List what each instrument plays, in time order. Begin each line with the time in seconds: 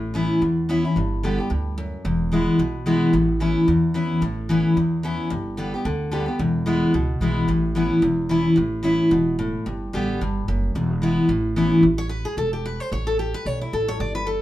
Already playing: upright bass A1, steel-string acoustic guitar A2
0.14 steel-string acoustic guitar E3 B3 C#4 E4
0.42 upright bass E2, steel-string acoustic guitar E2
0.69 steel-string acoustic guitar E3 B3 C#4 E4
0.85 steel-string acoustic guitar C#4 E4
0.96 upright bass G1, steel-string acoustic guitar G2
1.23 steel-string acoustic guitar D3 G3 B3 G4
1.38 steel-string acoustic guitar B3 G4
1.50 upright bass D2, steel-string acoustic guitar G2
1.78 steel-string acoustic guitar F#2
2.05 upright bass E1, steel-string acoustic guitar E2
2.32 steel-string acoustic guitar E3 G#3 B3 E4
2.59 upright bass B1, steel-string acoustic guitar B2
2.86 steel-string acoustic guitar E3 G#3 B3 E4
3.13 upright bass A1, steel-string acoustic guitar A2
3.40 steel-string acoustic guitar E3 B3 C#4 E4
3.68 upright bass E2, steel-string acoustic guitar E2
3.94 steel-string acoustic guitar E3 B3 C#4 E4
4.21 upright bass A1, steel-string acoustic guitar A2
4.49 steel-string acoustic guitar E3 B3 C#4 E4
4.76 upright bass E2, steel-string acoustic guitar E2
5.03 steel-string acoustic guitar E3 B3 C#4 E4
5.30 upright bass G1, steel-string acoustic guitar G2
5.57 steel-string acoustic guitar D3 G3 B3 G4
5.74 steel-string acoustic guitar B3 G4
5.85 upright bass D2, steel-string acoustic guitar D3
6.11 steel-string acoustic guitar D3 G3 B3 G4
6.26 steel-string acoustic guitar B3 G4
6.39 upright bass E1, steel-string acoustic guitar E2
6.66 steel-string acoustic guitar E3 G#3 B3 E4
6.94 upright bass C#2, steel-string acoustic guitar B2
7.21 upright bass B1, steel-string acoustic guitar E3 G#3 B3 E4
7.48 upright bass A1, steel-string acoustic guitar A2
7.75 steel-string acoustic guitar E3 B3 C#4 E4
8.02 upright bass E1, steel-string acoustic guitar E2
8.29 steel-string acoustic guitar E3 B3 C#4 E4
8.56 upright bass A1, steel-string acoustic guitar A2
8.83 steel-string acoustic guitar E3 B3 C#4 E4
9.11 upright bass E1, steel-string acoustic guitar B2
9.39 steel-string acoustic guitar A2
9.66 upright bass G1, steel-string acoustic guitar G2
9.93 upright bass A1, steel-string acoustic guitar D3 G3 B3 G4
10.21 upright bass G1, steel-string acoustic guitar G2
10.48 upright bass F#1, steel-string acoustic guitar F#2
10.75 upright bass E1, steel-string acoustic guitar E2
11.02 steel-string acoustic guitar E3 G#3 B3 E4
11.29 upright bass A1, steel-string acoustic guitar A2
11.56 steel-string acoustic guitar E3 B3 C#4 E4
11.83 upright bass A1
11.98 steel-string acoustic guitar C#5
12.09 steel-string acoustic guitar B4
12.25 steel-string acoustic guitar G#4
12.37 upright bass E1, steel-string acoustic guitar A4
12.53 steel-string acoustic guitar G4
12.66 steel-string acoustic guitar B4
12.80 steel-string acoustic guitar C5
12.92 upright bass A1, steel-string acoustic guitar C#5
13.07 steel-string acoustic guitar A4
13.19 steel-string acoustic guitar G4
13.34 steel-string acoustic guitar B4
13.46 upright bass B1, steel-string acoustic guitar C#5
13.61 steel-string acoustic guitar E4
13.73 upright bass A1, steel-string acoustic guitar A4
13.88 steel-string acoustic guitar C#5
14.00 upright bass G1, steel-string acoustic guitar D5
14.15 steel-string acoustic guitar B4
14.27 steel-string acoustic guitar A4